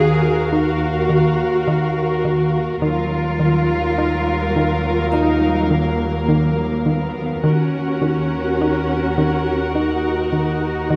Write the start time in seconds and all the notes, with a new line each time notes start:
Already playing: D#2 D#3 F#4 G#4 A#4 F5
0.51 D#4 F#4
1.09 D#3
1.68 D#3
2.25 D#3
2.82 D#2 D#3 F#3 F4 A#4 F5
3.40 D#3
3.98 D#4
4.56 D#3
5.12 D#4 F4 F6
5.71 D#3 A#3
6.29 D#3
6.86 D#3 B3
7.43 D#2 D#3 C#4 F#4 A#4 F#5
8.02 D#3
8.61 D#4
9.18 D#3
9.75 D#4
10.32 D#3
10.90 D#3